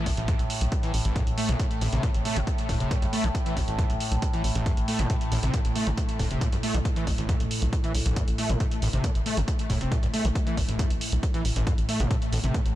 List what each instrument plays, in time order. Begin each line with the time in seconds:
Already playing: synth drone A2
0.06 analog synth bass A1, kick, open hi-hat
0.17 analog synth bass A1, acid bass A1, closed hi-hat
0.28 acid bass A2, kick, closed hi-hat
0.39 analog synth bass B1, closed hi-hat
0.50 open hi-hat
0.61 analog synth bass B1, closed hi-hat
0.72 kick, closed hi-hat
0.83 acid bass E3, closed hi-hat
0.94 analog synth bass A1, open hi-hat
1.05 acid bass A1, analog synth bass A1, closed hi-hat
1.16 acid bass A2, kick, closed hi-hat
1.27 analog synth bass B1, closed hi-hat
1.38 acid bass A3, open hi-hat
1.49 analog synth bass B1, acid bass A2, closed hi-hat
1.59 acid bass A2, kick, closed hi-hat
1.71 closed hi-hat
1.81 analog synth bass A1, acid bass A2, open hi-hat
1.93 analog synth bass A1, acid bass C3, closed hi-hat
2.03 acid bass A2, kick, closed hi-hat
2.14 analog synth bass A1, closed hi-hat
2.25 acid bass A3, open hi-hat
2.36 analog synth bass A1, acid bass A2, closed hi-hat
2.47 kick, closed hi-hat
2.58 closed hi-hat
2.69 analog synth bass E1, acid bass A2, kick, open hi-hat
2.80 analog synth bass E1, acid bass C3, closed hi-hat
2.91 acid bass A2, kick, closed hi-hat
3.02 analog synth bass B1, acid bass G2, closed hi-hat
3.13 acid bass A3, open hi-hat
3.24 analog synth bass B1, acid bass C3, closed hi-hat
3.35 kick, closed hi-hat
3.46 acid bass E3, closed hi-hat
3.57 analog synth bass A1, kick, open hi-hat
3.68 analog synth bass A1, acid bass A1, closed hi-hat
3.79 acid bass A2, kick, closed hi-hat
3.90 analog synth bass B1, closed hi-hat
4.00 open hi-hat
4.12 analog synth bass B1, closed hi-hat
4.22 kick, closed hi-hat
4.33 acid bass E3, closed hi-hat
4.44 analog synth bass A1, open hi-hat
4.55 analog synth bass A1, acid bass A1, closed hi-hat
4.66 acid bass A2, kick, closed hi-hat
4.77 analog synth bass A1, closed hi-hat
4.88 acid bass A3, open hi-hat
4.99 analog synth bass A1, acid bass A2, closed hi-hat
5.10 acid bass A2, kick, closed hi-hat
5.21 closed hi-hat
5.32 analog synth bass A1, acid bass A2, open hi-hat
5.43 analog synth bass A1, acid bass C3, closed hi-hat
5.54 acid bass A2, kick, closed hi-hat
5.65 analog synth bass A1, closed hi-hat
5.76 acid bass A3, open hi-hat
5.87 analog synth bass A1, acid bass A2, closed hi-hat
5.98 kick, closed hi-hat
6.09 closed hi-hat
6.19 analog synth bass E1, acid bass A2, kick, open hi-hat
6.30 analog synth bass E1, acid bass C3, closed hi-hat
6.41 acid bass A2, kick, closed hi-hat
6.52 analog synth bass B1, acid bass G2, closed hi-hat
6.63 acid bass A3, open hi-hat
6.74 analog synth bass B1, acid bass C3, closed hi-hat
6.85 kick, closed hi-hat
6.96 acid bass E3, closed hi-hat
7.07 analog synth bass A1, kick, open hi-hat
7.18 analog synth bass A1, acid bass A1, closed hi-hat
7.29 acid bass A2, kick, closed hi-hat
7.40 analog synth bass B1, closed hi-hat
7.51 open hi-hat
7.62 analog synth bass B1, closed hi-hat
7.73 kick, closed hi-hat
7.84 acid bass E3, closed hi-hat
7.95 analog synth bass B1, open hi-hat
8.06 acid bass A1, analog synth bass B1, closed hi-hat
8.16 acid bass A2, kick, closed hi-hat
8.28 analog synth bass A1, closed hi-hat
8.38 acid bass A3, open hi-hat
8.49 analog synth bass A1, acid bass A2, closed hi-hat
8.60 acid bass A2, synth drone A2, kick, closed hi-hat
8.71 closed hi-hat
8.82 analog synth bass A1, acid bass A2, open hi-hat
8.93 analog synth bass A1, acid bass C3, closed hi-hat
9.04 acid bass A2, kick, closed hi-hat
9.15 analog synth bass A1, closed hi-hat
9.26 acid bass A3, open hi-hat
9.37 analog synth bass A1, acid bass A2, closed hi-hat
9.48 kick, closed hi-hat
9.59 closed hi-hat
9.70 analog synth bass E1, acid bass A2, kick, open hi-hat
9.81 analog synth bass E1, acid bass C3, closed hi-hat
9.92 acid bass A2, kick, closed hi-hat
10.03 analog synth bass B1, acid bass G2, closed hi-hat
10.13 acid bass A3, open hi-hat
10.25 analog synth bass B1, acid bass C3, closed hi-hat
10.35 kick, closed hi-hat
10.47 acid bass E3, closed hi-hat
10.57 analog synth bass A1, kick, open hi-hat
10.68 analog synth bass A1, acid bass A1, closed hi-hat
10.79 acid bass A2, kick, closed hi-hat
10.90 analog synth bass B1, closed hi-hat
11.01 open hi-hat
11.12 analog synth bass B1, closed hi-hat
11.23 kick, closed hi-hat
11.34 acid bass E3, closed hi-hat
11.45 analog synth bass A1, open hi-hat
11.56 acid bass A1, analog synth bass A1, closed hi-hat
11.67 acid bass A2, kick, closed hi-hat
11.78 analog synth bass A1, closed hi-hat
11.89 acid bass A3, open hi-hat
12.00 analog synth bass A1, acid bass A2, closed hi-hat
12.11 acid bass A2, kick, closed hi-hat
12.22 closed hi-hat
12.32 analog synth bass A1, acid bass A2, open hi-hat
12.44 analog synth bass A1, acid bass C3, closed hi-hat
12.54 acid bass A2, kick, closed hi-hat
12.66 analog synth bass A1, closed hi-hat